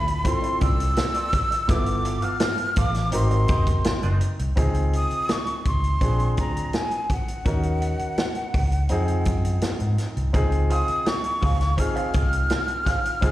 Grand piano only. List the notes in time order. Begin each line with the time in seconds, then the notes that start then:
Already playing: C4 E4 F4 A4
0.24 C4 E4 F4 A4
1.68 B3 E4 F4 A4
3.11 C4 D#4 F#4 A#4
4.56 C4 D#4 F4 G#4
6.01 C4 D4 F4 G#4
7.45 C#4 D#4 F#4 A#4
8.89 F3 C4 D#4 G#4
10.33 C4 D#4 F4 G#4
11.77 C4 D#4 F4 G#4
13.21 C4 D#4 F4 G#4